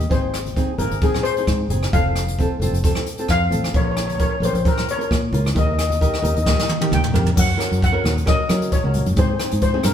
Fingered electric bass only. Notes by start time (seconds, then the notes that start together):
0.11 G#1
0.78 G#1
0.91 G#1
1.47 G#2
1.69 F#1
1.93 F1
2.60 F1
2.71 F1
3.29 F2
3.50 A1
3.74 A#1
4.40 A#1
4.53 A#1
5.11 A#2
5.32 C#2
5.55 D#2
6.24 D#2
6.37 D#2
6.91 D#2
7.14 F2
7.37 F#2
7.72 F#2
8.05 D#2
8.49 F#3
8.84 C#2
9.06 F#2
9.16 G#2
9.53 G#2
9.84 G2